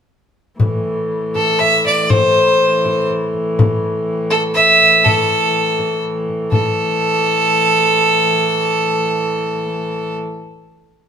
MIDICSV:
0, 0, Header, 1, 4, 480
1, 0, Start_track
1, 0, Key_signature, 0, "minor"
1, 0, Tempo, 495050
1, 579, Time_signature, 3, 2, 24, 8
1, 5853, Tempo, 476569
1, 10939, End_track
2, 0, Start_track
2, 0, Title_t, "Fiddle"
2, 0, Program_c, 0, 110
2, 1307, Note_on_c, 0, 69, 82
2, 1541, Note_on_c, 0, 76, 96
2, 1556, Note_off_c, 0, 69, 0
2, 1786, Note_off_c, 0, 76, 0
2, 1802, Note_on_c, 0, 74, 76
2, 2037, Note_on_c, 0, 72, 84
2, 2051, Note_off_c, 0, 74, 0
2, 2998, Note_off_c, 0, 72, 0
2, 4172, Note_on_c, 0, 69, 80
2, 4284, Note_off_c, 0, 69, 0
2, 4405, Note_on_c, 0, 76, 101
2, 4887, Note_on_c, 0, 69, 82
2, 4901, Note_off_c, 0, 76, 0
2, 5844, Note_off_c, 0, 69, 0
2, 6335, Note_on_c, 0, 69, 86
2, 9994, Note_off_c, 0, 69, 0
2, 10939, End_track
3, 0, Start_track
3, 0, Title_t, "Hurdy-gurdy"
3, 0, Program_c, 1, 110
3, 580, Note_on_c, 1, 52, 57
3, 581, Note_on_c, 1, 45, 63
3, 6333, Note_off_c, 1, 45, 0
3, 6333, Note_on_c, 1, 45, 56
3, 6341, Note_off_c, 1, 52, 0
3, 6341, Note_on_c, 1, 52, 65
3, 10041, Note_off_c, 1, 45, 0
3, 10044, Note_off_c, 1, 52, 0
3, 10939, End_track
4, 0, Start_track
4, 0, Title_t, "Frame drum"
4, 578, Note_on_c, 9, 64, 70
4, 675, Note_off_c, 9, 64, 0
4, 825, Note_on_c, 9, 64, 24
4, 922, Note_off_c, 9, 64, 0
4, 1312, Note_on_c, 9, 64, 54
4, 1409, Note_off_c, 9, 64, 0
4, 1557, Note_on_c, 9, 64, 24
4, 1654, Note_off_c, 9, 64, 0
4, 1797, Note_on_c, 9, 64, 21
4, 1894, Note_off_c, 9, 64, 0
4, 2038, Note_on_c, 9, 64, 75
4, 2135, Note_off_c, 9, 64, 0
4, 2281, Note_on_c, 9, 64, 23
4, 2378, Note_off_c, 9, 64, 0
4, 2764, Note_on_c, 9, 64, 57
4, 2861, Note_off_c, 9, 64, 0
4, 3002, Note_on_c, 9, 64, 29
4, 3099, Note_off_c, 9, 64, 0
4, 3237, Note_on_c, 9, 64, 25
4, 3334, Note_off_c, 9, 64, 0
4, 3480, Note_on_c, 9, 64, 85
4, 3577, Note_off_c, 9, 64, 0
4, 3723, Note_on_c, 9, 64, 27
4, 3820, Note_off_c, 9, 64, 0
4, 4434, Note_on_c, 9, 64, 24
4, 4531, Note_off_c, 9, 64, 0
4, 4668, Note_on_c, 9, 64, 19
4, 4765, Note_off_c, 9, 64, 0
4, 4903, Note_on_c, 9, 64, 65
4, 5000, Note_off_c, 9, 64, 0
4, 5147, Note_on_c, 9, 64, 22
4, 5244, Note_off_c, 9, 64, 0
4, 5614, Note_on_c, 9, 64, 50
4, 5711, Note_off_c, 9, 64, 0
4, 6104, Note_on_c, 9, 64, 24
4, 6205, Note_off_c, 9, 64, 0
4, 6340, Note_on_c, 9, 64, 68
4, 6441, Note_off_c, 9, 64, 0
4, 10939, End_track
0, 0, End_of_file